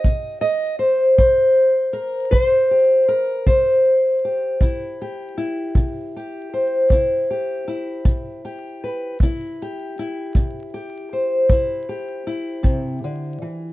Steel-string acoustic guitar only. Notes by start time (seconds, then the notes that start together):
Already playing: E4 G4 D#5
0.05 C3
0.41 D#5
0.79 C5
1.18 C3 C5
1.93 A#4
2.31 C3 C5
2.71 G4
3.08 A#4 B4
3.46 C3 C5
4.25 G4
4.61 C3 E4
5.02 G4
5.38 E4
5.77 C3
6.16 G4
6.53 C5
6.91 C3 E4
7.30 G4
7.68 E4
8.05 C3
8.45 G4
8.84 B4
9.22 C3 E4
9.62 G4
9.99 E4
10.36 C3
10.74 G4
11.13 C5
11.50 C3 E4
11.89 G4
12.27 E4
12.63 C3
13.04 D3
13.42 E3